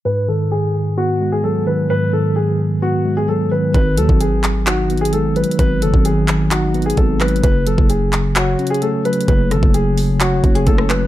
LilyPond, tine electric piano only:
\new Staff \with { instrumentName = "Tine electric piano" } { \clef bass \time 4/4 \key gis \phrygian \tempo 4 = 130 gis,8 dis4. b8 gis8 fis8 dis8 | gis,8 dis4. b8 gis8 fis8 dis8 | dis8 fis4. dis'8 b8 gis8 fis8 | dis8 fis4. dis'8 b8 gis8 fis8 |
cis8 fis4. cis''8 cis'8 a8 fis8 | cis8 fis4. cis''8 cis'8 a8 fis8 | }